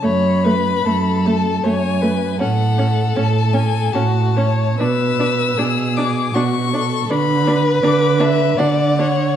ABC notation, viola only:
X:1
M:3/4
L:1/8
Q:1/4=78
K:F#m
V:1 name="Viola"
A, A, A, A, A, A, | C C C C C C | D D D D D D | D D D D D D |]